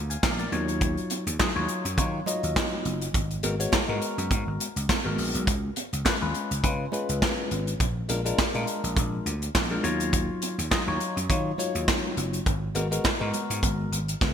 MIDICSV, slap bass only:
0, 0, Header, 1, 3, 480
1, 0, Start_track
1, 0, Tempo, 582524
1, 669, Time_signature, 4, 2, 24, 8
1, 11812, End_track
2, 0, Start_track
2, 0, Title_t, "Slap bass"
2, 0, Program_c, 0, 36
2, 0, Note_on_c, 0, 38, 76
2, 129, Note_off_c, 0, 38, 0
2, 191, Note_on_c, 0, 34, 92
2, 370, Note_off_c, 0, 34, 0
2, 428, Note_on_c, 0, 39, 101
2, 789, Note_off_c, 0, 39, 0
2, 1043, Note_on_c, 0, 39, 92
2, 1123, Note_off_c, 0, 39, 0
2, 1284, Note_on_c, 0, 39, 85
2, 1363, Note_off_c, 0, 39, 0
2, 1524, Note_on_c, 0, 42, 90
2, 1630, Note_on_c, 0, 51, 115
2, 1642, Note_off_c, 0, 42, 0
2, 1810, Note_off_c, 0, 51, 0
2, 2005, Note_on_c, 0, 39, 90
2, 2084, Note_off_c, 0, 39, 0
2, 2350, Note_on_c, 0, 30, 92
2, 2530, Note_off_c, 0, 30, 0
2, 2590, Note_on_c, 0, 32, 106
2, 2770, Note_off_c, 0, 32, 0
2, 2829, Note_on_c, 0, 32, 97
2, 3009, Note_off_c, 0, 32, 0
2, 3204, Note_on_c, 0, 44, 87
2, 3283, Note_off_c, 0, 44, 0
2, 3443, Note_on_c, 0, 42, 71
2, 3523, Note_off_c, 0, 42, 0
2, 3550, Note_on_c, 0, 44, 84
2, 3650, Note_off_c, 0, 44, 0
2, 3684, Note_on_c, 0, 32, 83
2, 3763, Note_off_c, 0, 32, 0
2, 3924, Note_on_c, 0, 37, 90
2, 4003, Note_off_c, 0, 37, 0
2, 4165, Note_on_c, 0, 32, 85
2, 4244, Note_off_c, 0, 32, 0
2, 4271, Note_on_c, 0, 34, 78
2, 4371, Note_off_c, 0, 34, 0
2, 4405, Note_on_c, 0, 35, 87
2, 4510, Note_off_c, 0, 35, 0
2, 4510, Note_on_c, 0, 37, 110
2, 4690, Note_off_c, 0, 37, 0
2, 4884, Note_on_c, 0, 37, 89
2, 4963, Note_off_c, 0, 37, 0
2, 5126, Note_on_c, 0, 39, 83
2, 5204, Note_off_c, 0, 39, 0
2, 5364, Note_on_c, 0, 37, 86
2, 5443, Note_off_c, 0, 37, 0
2, 5469, Note_on_c, 0, 49, 99
2, 5649, Note_off_c, 0, 49, 0
2, 5844, Note_on_c, 0, 37, 91
2, 5923, Note_off_c, 0, 37, 0
2, 6190, Note_on_c, 0, 32, 82
2, 6370, Note_off_c, 0, 32, 0
2, 6428, Note_on_c, 0, 34, 105
2, 6609, Note_off_c, 0, 34, 0
2, 6667, Note_on_c, 0, 34, 97
2, 6848, Note_off_c, 0, 34, 0
2, 7044, Note_on_c, 0, 46, 78
2, 7123, Note_off_c, 0, 46, 0
2, 7281, Note_on_c, 0, 34, 82
2, 7361, Note_off_c, 0, 34, 0
2, 7387, Note_on_c, 0, 34, 91
2, 7568, Note_off_c, 0, 34, 0
2, 7628, Note_on_c, 0, 38, 91
2, 7809, Note_off_c, 0, 38, 0
2, 7868, Note_on_c, 0, 34, 91
2, 8049, Note_off_c, 0, 34, 0
2, 8108, Note_on_c, 0, 39, 102
2, 8469, Note_off_c, 0, 39, 0
2, 8721, Note_on_c, 0, 39, 82
2, 8801, Note_off_c, 0, 39, 0
2, 8961, Note_on_c, 0, 39, 78
2, 9041, Note_off_c, 0, 39, 0
2, 9201, Note_on_c, 0, 42, 98
2, 9281, Note_off_c, 0, 42, 0
2, 9308, Note_on_c, 0, 51, 93
2, 9489, Note_off_c, 0, 51, 0
2, 9682, Note_on_c, 0, 39, 98
2, 9762, Note_off_c, 0, 39, 0
2, 10027, Note_on_c, 0, 30, 77
2, 10208, Note_off_c, 0, 30, 0
2, 10270, Note_on_c, 0, 32, 101
2, 10450, Note_off_c, 0, 32, 0
2, 10508, Note_on_c, 0, 32, 100
2, 10689, Note_off_c, 0, 32, 0
2, 10884, Note_on_c, 0, 44, 93
2, 10963, Note_off_c, 0, 44, 0
2, 11123, Note_on_c, 0, 44, 78
2, 11203, Note_off_c, 0, 44, 0
2, 11229, Note_on_c, 0, 32, 96
2, 11410, Note_off_c, 0, 32, 0
2, 11468, Note_on_c, 0, 32, 92
2, 11649, Note_off_c, 0, 32, 0
2, 11711, Note_on_c, 0, 37, 92
2, 11812, Note_off_c, 0, 37, 0
2, 11812, End_track
3, 0, Start_track
3, 0, Title_t, "Muted slap bass strokes"
3, 3073, Note_on_c, 9, 29, 47
3, 3155, Note_off_c, 9, 29, 0
3, 6910, Note_on_c, 9, 29, 51
3, 6993, Note_off_c, 9, 29, 0
3, 10752, Note_on_c, 9, 29, 49
3, 10835, Note_off_c, 9, 29, 0
3, 11812, End_track
0, 0, End_of_file